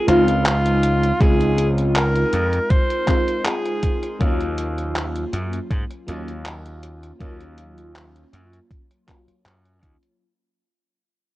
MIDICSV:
0, 0, Header, 1, 6, 480
1, 0, Start_track
1, 0, Tempo, 750000
1, 771, Time_signature, 4, 2, 24, 8
1, 7264, End_track
2, 0, Start_track
2, 0, Title_t, "Alto saxophone"
2, 0, Program_c, 0, 65
2, 56, Note_on_c, 0, 65, 86
2, 277, Note_off_c, 0, 65, 0
2, 299, Note_on_c, 0, 65, 95
2, 776, Note_on_c, 0, 68, 110
2, 785, Note_off_c, 0, 65, 0
2, 1085, Note_off_c, 0, 68, 0
2, 1254, Note_on_c, 0, 70, 108
2, 1733, Note_on_c, 0, 72, 121
2, 1743, Note_off_c, 0, 70, 0
2, 2213, Note_on_c, 0, 68, 98
2, 2223, Note_off_c, 0, 72, 0
2, 2692, Note_off_c, 0, 68, 0
2, 7264, End_track
3, 0, Start_track
3, 0, Title_t, "FM electric piano"
3, 0, Program_c, 1, 5
3, 0, Control_c, 1, 64, 127
3, 0, Note_on_c, 1, 56, 100
3, 0, Note_on_c, 1, 60, 89
3, 0, Note_on_c, 1, 63, 91
3, 0, Note_on_c, 1, 65, 106
3, 44, Note_off_c, 1, 56, 0
3, 44, Note_on_c, 1, 56, 88
3, 50, Note_off_c, 1, 60, 0
3, 50, Note_on_c, 1, 60, 82
3, 56, Note_off_c, 1, 63, 0
3, 56, Note_on_c, 1, 63, 81
3, 62, Note_off_c, 1, 65, 0
3, 62, Note_on_c, 1, 65, 100
3, 740, Note_off_c, 1, 56, 0
3, 743, Note_off_c, 1, 60, 0
3, 746, Note_off_c, 1, 63, 0
3, 749, Note_off_c, 1, 65, 0
3, 767, Note_on_c, 1, 56, 96
3, 773, Note_on_c, 1, 60, 89
3, 780, Note_on_c, 1, 63, 88
3, 785, Note_on_c, 1, 65, 107
3, 1942, Note_off_c, 1, 56, 0
3, 1945, Note_off_c, 1, 60, 0
3, 1948, Note_off_c, 1, 63, 0
3, 1951, Note_off_c, 1, 65, 0
3, 1962, Note_on_c, 1, 56, 91
3, 1968, Note_on_c, 1, 60, 79
3, 1974, Note_on_c, 1, 63, 82
3, 1979, Note_on_c, 1, 65, 97
3, 2659, Note_off_c, 1, 56, 0
3, 2662, Note_off_c, 1, 60, 0
3, 2665, Note_off_c, 1, 63, 0
3, 2668, Note_off_c, 1, 65, 0
3, 2681, Note_on_c, 1, 54, 92
3, 2687, Note_on_c, 1, 58, 90
3, 2693, Note_on_c, 1, 61, 85
3, 2700, Control_c, 1, 64, 0
3, 2702, Note_on_c, 1, 65, 101
3, 2802, Control_c, 1, 64, 127
3, 3859, Note_off_c, 1, 54, 0
3, 3862, Note_off_c, 1, 58, 0
3, 3865, Note_off_c, 1, 61, 0
3, 3869, Note_off_c, 1, 65, 0
3, 3882, Note_on_c, 1, 54, 87
3, 3888, Note_on_c, 1, 58, 80
3, 3894, Note_on_c, 1, 61, 81
3, 3900, Note_on_c, 1, 65, 94
3, 4579, Note_off_c, 1, 54, 0
3, 4582, Note_off_c, 1, 58, 0
3, 4585, Note_off_c, 1, 61, 0
3, 4588, Note_off_c, 1, 65, 0
3, 4603, Note_on_c, 1, 54, 95
3, 4610, Note_on_c, 1, 58, 87
3, 4617, Note_on_c, 1, 61, 90
3, 4622, Note_on_c, 1, 65, 104
3, 5780, Note_off_c, 1, 54, 0
3, 5783, Note_off_c, 1, 58, 0
3, 5787, Note_off_c, 1, 61, 0
3, 5789, Note_off_c, 1, 65, 0
3, 5804, Note_on_c, 1, 54, 87
3, 5810, Note_on_c, 1, 58, 75
3, 5815, Note_on_c, 1, 61, 78
3, 5823, Note_on_c, 1, 65, 94
3, 6500, Note_off_c, 1, 54, 0
3, 6503, Note_off_c, 1, 58, 0
3, 6506, Note_off_c, 1, 61, 0
3, 6510, Note_off_c, 1, 65, 0
3, 6538, Control_c, 1, 64, 0
3, 7264, End_track
4, 0, Start_track
4, 0, Title_t, "Slap bass"
4, 0, Program_c, 2, 36
4, 50, Note_on_c, 2, 37, 91
4, 707, Note_off_c, 2, 37, 0
4, 770, Note_on_c, 2, 37, 94
4, 1428, Note_off_c, 2, 37, 0
4, 1490, Note_on_c, 2, 41, 75
4, 1652, Note_off_c, 2, 41, 0
4, 2691, Note_on_c, 2, 39, 93
4, 3348, Note_off_c, 2, 39, 0
4, 3410, Note_on_c, 2, 42, 78
4, 3572, Note_off_c, 2, 42, 0
4, 3650, Note_on_c, 2, 44, 73
4, 3733, Note_off_c, 2, 44, 0
4, 3891, Note_on_c, 2, 39, 92
4, 4548, Note_off_c, 2, 39, 0
4, 4611, Note_on_c, 2, 39, 95
4, 5268, Note_off_c, 2, 39, 0
4, 5330, Note_on_c, 2, 42, 76
4, 5492, Note_off_c, 2, 42, 0
4, 6049, Note_on_c, 2, 42, 81
4, 6291, Note_off_c, 2, 42, 0
4, 6291, Note_on_c, 2, 39, 87
4, 6374, Note_off_c, 2, 39, 0
4, 7264, End_track
5, 0, Start_track
5, 0, Title_t, "Muted slap bass strokes"
5, 5939, Note_on_c, 9, 29, 41
5, 6003, Note_off_c, 9, 29, 0
5, 7264, End_track
6, 0, Start_track
6, 0, Title_t, "Drums"
6, 52, Note_on_c, 9, 42, 97
6, 116, Note_off_c, 9, 42, 0
6, 180, Note_on_c, 9, 42, 41
6, 244, Note_off_c, 9, 42, 0
6, 292, Note_on_c, 9, 39, 117
6, 292, Note_on_c, 9, 42, 70
6, 356, Note_off_c, 9, 39, 0
6, 356, Note_off_c, 9, 42, 0
6, 420, Note_on_c, 9, 42, 40
6, 484, Note_off_c, 9, 42, 0
6, 532, Note_on_c, 9, 42, 95
6, 596, Note_off_c, 9, 42, 0
6, 661, Note_on_c, 9, 42, 42
6, 725, Note_off_c, 9, 42, 0
6, 771, Note_on_c, 9, 36, 120
6, 773, Note_on_c, 9, 42, 72
6, 835, Note_off_c, 9, 36, 0
6, 837, Note_off_c, 9, 42, 0
6, 899, Note_on_c, 9, 42, 44
6, 963, Note_off_c, 9, 42, 0
6, 1012, Note_on_c, 9, 42, 98
6, 1076, Note_off_c, 9, 42, 0
6, 1139, Note_on_c, 9, 42, 41
6, 1203, Note_off_c, 9, 42, 0
6, 1251, Note_on_c, 9, 39, 116
6, 1251, Note_on_c, 9, 42, 68
6, 1315, Note_off_c, 9, 39, 0
6, 1315, Note_off_c, 9, 42, 0
6, 1379, Note_on_c, 9, 42, 40
6, 1443, Note_off_c, 9, 42, 0
6, 1490, Note_on_c, 9, 42, 92
6, 1554, Note_off_c, 9, 42, 0
6, 1619, Note_on_c, 9, 42, 40
6, 1683, Note_off_c, 9, 42, 0
6, 1731, Note_on_c, 9, 42, 65
6, 1732, Note_on_c, 9, 36, 123
6, 1795, Note_off_c, 9, 42, 0
6, 1796, Note_off_c, 9, 36, 0
6, 1859, Note_on_c, 9, 42, 41
6, 1923, Note_off_c, 9, 42, 0
6, 1972, Note_on_c, 9, 36, 66
6, 1972, Note_on_c, 9, 39, 61
6, 1972, Note_on_c, 9, 42, 91
6, 2036, Note_off_c, 9, 36, 0
6, 2036, Note_off_c, 9, 39, 0
6, 2036, Note_off_c, 9, 42, 0
6, 2100, Note_on_c, 9, 42, 40
6, 2164, Note_off_c, 9, 42, 0
6, 2210, Note_on_c, 9, 39, 117
6, 2210, Note_on_c, 9, 42, 70
6, 2274, Note_off_c, 9, 39, 0
6, 2274, Note_off_c, 9, 42, 0
6, 2340, Note_on_c, 9, 42, 40
6, 2404, Note_off_c, 9, 42, 0
6, 2450, Note_on_c, 9, 42, 96
6, 2451, Note_on_c, 9, 36, 63
6, 2514, Note_off_c, 9, 42, 0
6, 2515, Note_off_c, 9, 36, 0
6, 2578, Note_on_c, 9, 42, 40
6, 2642, Note_off_c, 9, 42, 0
6, 2692, Note_on_c, 9, 36, 119
6, 2692, Note_on_c, 9, 42, 66
6, 2756, Note_off_c, 9, 36, 0
6, 2756, Note_off_c, 9, 42, 0
6, 2819, Note_on_c, 9, 42, 41
6, 2883, Note_off_c, 9, 42, 0
6, 2930, Note_on_c, 9, 42, 94
6, 2994, Note_off_c, 9, 42, 0
6, 3059, Note_on_c, 9, 42, 40
6, 3123, Note_off_c, 9, 42, 0
6, 3172, Note_on_c, 9, 39, 121
6, 3172, Note_on_c, 9, 42, 63
6, 3236, Note_off_c, 9, 39, 0
6, 3236, Note_off_c, 9, 42, 0
6, 3298, Note_on_c, 9, 42, 39
6, 3362, Note_off_c, 9, 42, 0
6, 3411, Note_on_c, 9, 42, 90
6, 3475, Note_off_c, 9, 42, 0
6, 3538, Note_on_c, 9, 42, 39
6, 3602, Note_off_c, 9, 42, 0
6, 3651, Note_on_c, 9, 36, 120
6, 3652, Note_on_c, 9, 42, 65
6, 3715, Note_off_c, 9, 36, 0
6, 3716, Note_off_c, 9, 42, 0
6, 3779, Note_on_c, 9, 42, 37
6, 3843, Note_off_c, 9, 42, 0
6, 3891, Note_on_c, 9, 42, 90
6, 3955, Note_off_c, 9, 42, 0
6, 4019, Note_on_c, 9, 42, 39
6, 4083, Note_off_c, 9, 42, 0
6, 4130, Note_on_c, 9, 39, 124
6, 4130, Note_on_c, 9, 42, 66
6, 4194, Note_off_c, 9, 39, 0
6, 4194, Note_off_c, 9, 42, 0
6, 4259, Note_on_c, 9, 42, 40
6, 4323, Note_off_c, 9, 42, 0
6, 4370, Note_on_c, 9, 42, 95
6, 4434, Note_off_c, 9, 42, 0
6, 4499, Note_on_c, 9, 42, 38
6, 4563, Note_off_c, 9, 42, 0
6, 4611, Note_on_c, 9, 36, 116
6, 4612, Note_on_c, 9, 42, 67
6, 4675, Note_off_c, 9, 36, 0
6, 4676, Note_off_c, 9, 42, 0
6, 4740, Note_on_c, 9, 42, 38
6, 4804, Note_off_c, 9, 42, 0
6, 4851, Note_on_c, 9, 42, 86
6, 4915, Note_off_c, 9, 42, 0
6, 4979, Note_on_c, 9, 42, 39
6, 5043, Note_off_c, 9, 42, 0
6, 5093, Note_on_c, 9, 39, 121
6, 5093, Note_on_c, 9, 42, 63
6, 5157, Note_off_c, 9, 39, 0
6, 5157, Note_off_c, 9, 42, 0
6, 5221, Note_on_c, 9, 42, 36
6, 5285, Note_off_c, 9, 42, 0
6, 5333, Note_on_c, 9, 42, 87
6, 5397, Note_off_c, 9, 42, 0
6, 5460, Note_on_c, 9, 42, 36
6, 5524, Note_off_c, 9, 42, 0
6, 5571, Note_on_c, 9, 36, 118
6, 5573, Note_on_c, 9, 42, 61
6, 5635, Note_off_c, 9, 36, 0
6, 5637, Note_off_c, 9, 42, 0
6, 5701, Note_on_c, 9, 42, 37
6, 5765, Note_off_c, 9, 42, 0
6, 5811, Note_on_c, 9, 36, 63
6, 5814, Note_on_c, 9, 39, 61
6, 5814, Note_on_c, 9, 42, 83
6, 5875, Note_off_c, 9, 36, 0
6, 5878, Note_off_c, 9, 39, 0
6, 5878, Note_off_c, 9, 42, 0
6, 5941, Note_on_c, 9, 42, 37
6, 6005, Note_off_c, 9, 42, 0
6, 6052, Note_on_c, 9, 39, 122
6, 6052, Note_on_c, 9, 42, 62
6, 6116, Note_off_c, 9, 39, 0
6, 6116, Note_off_c, 9, 42, 0
6, 6180, Note_on_c, 9, 42, 37
6, 6244, Note_off_c, 9, 42, 0
6, 6291, Note_on_c, 9, 36, 62
6, 6292, Note_on_c, 9, 42, 86
6, 6355, Note_off_c, 9, 36, 0
6, 6356, Note_off_c, 9, 42, 0
6, 6419, Note_on_c, 9, 42, 37
6, 6483, Note_off_c, 9, 42, 0
6, 7264, End_track
0, 0, End_of_file